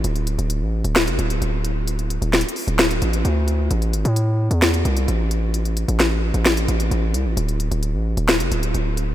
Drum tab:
HH |x--x--x--x--x--------x--x--x--x--x--x-----x-----|x--x--x--x--x-x-x-o--x--x--x--x--x--x-----x-----|x--x--x--x--x--------x--x--x--x--x--x-----x-----|x--x--x--x--x--------x--x--x--x--x--x-----x-----|
SD |------------------------o-----------------------|------------o-----------o-----------------------|------------------------o-----------------------|------------o-----------o-----------------------|

HH |x--x--x--x--x--------x--x--x--x--x--x-----x-----|
SD |------------------------o-----------------------|